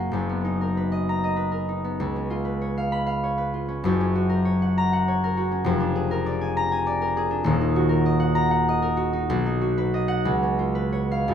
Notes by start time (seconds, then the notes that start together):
Already playing: F#1 F#2 A#3 C#4 F#4 A#4 C#5 F#5
0.11 F#1 F#2
0.29 B3
0.45 D#4
0.61 A#4
0.77 B4
0.92 D#5
1.09 A#5
1.24 D#5
1.36 B4
1.52 A#4
1.69 D#4
1.84 B3
2.00 C#2
2.16 C#4
2.30 F4
2.45 B4
2.61 C#5
2.77 F5
2.92 B5
3.06 F5
3.24 C#5
3.38 B4
3.54 F4
3.68 C#4
3.84 F#1 F#2
4.01 C#4
4.15 F#4
4.29 A#4
4.45 C#5
4.62 F#5
4.78 A#5
4.93 F#5
5.08 C#5
5.24 A#4
5.37 F#4
5.51 C#4
5.64 F1 F2
5.80 D4
5.95 G#4
6.11 A#4
6.26 D5
6.41 G#5
6.57 A#5
6.72 G#5
6.87 D5
7.02 A#4
7.17 G#4
7.31 D4
7.44 D#1 D#2
7.61 D#4
7.76 F#4
7.89 A#4
8.06 D#5
8.20 F#5
8.35 A#5
8.51 F#5
8.69 D#5
8.82 A#4
8.97 F#4
9.13 D#4
9.30 B1
9.46 D#4
9.61 F#4
9.78 B4
9.94 D#5
10.08 F#5
10.25 C#2
10.43 C#4
10.59 F4
10.75 B4
10.92 C#5
11.11 F5
11.28 F#1 F#2